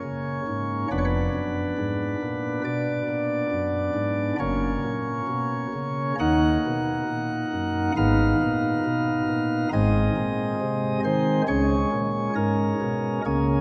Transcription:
0.00 0.41 C#3 medium
0.00 0.88 A#3 soft
0.00 0.88 C#4 soft
0.00 0.88 C#5 medium
0.47 0.85 G#2 medium
0.91 1.29 F1 medium
0.91 1.29 F2 medium
0.91 4.36 B3 soft
0.91 4.36 D4 soft
0.91 0.98 B4 loud
0.98 1.04 C#5 medium
1.05 2.62 B4 loud
1.34 1.72 F#2 medium
1.78 2.15 G#2 medium
2.22 2.59 A#2 medium
2.64 3.02 B2 medium
2.64 4.36 D5 loud
3.08 3.46 A#2 medium
3.51 3.89 F#2 medium
3.95 4.33 G#2 medium
4.39 4.77 F#1 medium
4.39 4.77 F#2 medium
4.39 6.15 A#3 medium
4.39 6.15 C#4 medium
4.39 6.15 C#5 loud
4.84 5.21 A#2 medium
5.28 5.67 B2 medium
5.74 6.13 C#3 medium
6.19 6.58 D#2 medium
6.19 6.58 D#3 medium
6.19 7.92 A#3 medium
6.19 7.92 D#4 medium
6.19 7.92 F#5 loud
6.66 7.03 B2 medium
7.08 7.46 A#2 medium
7.53 7.90 F#2 medium
7.96 8.34 G#1 medium
7.96 8.34 G#2 medium
7.96 9.69 B3 medium
7.96 9.69 D#4 medium
7.96 9.69 F5 loud
8.41 8.78 A#2 medium
8.85 9.22 B2 medium
9.28 9.66 A#2 medium
9.73 10.10 G#1 medium
9.73 10.10 G#2 medium
9.73 11.44 G#3 medium
9.73 11.44 C4 medium
9.73 11.00 D#5 loud
10.17 10.54 A#2 medium
10.61 10.97 C3 medium
11.05 11.42 D#3 medium
11.05 11.42 C5 loud
11.48 11.86 C#2 medium
11.48 11.85 C#3 medium
11.48 13.21 G#3 medium
11.48 13.21 C#4 medium
11.48 12.33 C#5 loud
11.92 12.29 A#2 medium
12.36 12.74 G#2 medium
12.36 13.22 A#4 loud
12.81 13.19 B2 medium
13.25 13.61 C#2 medium
13.25 13.61 C#3 medium
13.25 13.61 A#3 soft
13.25 13.61 C#4 soft
13.25 13.61 G#4 medium

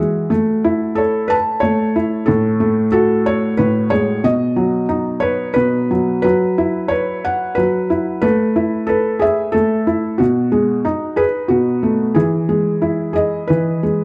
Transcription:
0.00 0.31 E3 medium
0.00 0.31 G#3 medium
0.00 1.01 F#4 medium
0.00 0.31 E5 medium
0.30 1.61 A3 medium
0.64 1.94 E4 medium
0.95 1.30 A4 medium
0.95 1.59 C#5 medium
1.28 1.35 B4 medium
1.28 2.27 A5 medium
1.60 2.27 A3 medium
1.60 2.28 C#5 medium
1.96 2.28 E4 medium
2.26 3.57 A2 medium
2.26 2.87 A4 medium
2.60 3.91 A3 medium
2.92 4.24 F#4 medium
2.92 3.53 A4 medium
3.26 3.89 C#5 medium
3.57 4.24 A2 medium
3.57 3.91 B4 medium
3.90 4.24 G#3 medium
3.90 4.24 C#5 medium
4.24 5.55 B2 medium
4.24 4.85 D#5 medium
4.56 5.89 F#3 medium
4.89 6.24 D#4 medium
5.20 5.52 B4 medium
5.20 5.53 C#5 medium
5.54 6.24 B2 medium
5.54 6.19 B4 medium
5.91 6.23 F#3 medium
6.22 7.56 F#3 medium
6.22 6.90 B4 medium
6.58 7.89 E4 medium
6.88 7.53 B4 medium
6.88 7.58 C#5 medium
7.25 8.23 F#5 medium
7.55 8.23 F#3 medium
7.55 8.20 B4 medium
7.90 8.23 E4 medium
8.22 9.53 A3 medium
8.22 8.84 B4 medium
8.56 9.85 E4 medium
8.87 9.21 A4 medium
8.87 10.19 B4 medium
9.19 9.54 G#4 medium
9.19 10.19 E5 medium
9.52 10.19 A3 medium
9.52 10.20 A4 medium
9.87 10.19 E4 medium
10.18 10.85 B2 medium
10.18 11.19 F#4 medium
10.52 10.84 G#3 medium
10.85 12.16 D#4 medium
11.16 11.24 G#4 medium
11.16 12.15 B4 medium
11.48 12.16 B2 medium
11.48 12.17 F#4 medium
11.83 12.15 A3 medium
12.15 13.48 E3 medium
12.15 13.12 G#4 medium
12.49 13.82 G#3 medium
12.82 14.04 E4 medium
13.13 13.49 G#4 medium
13.13 14.04 D#5 medium
13.47 14.04 E3 medium
13.47 14.04 B4 medium
13.83 14.04 G#3 medium

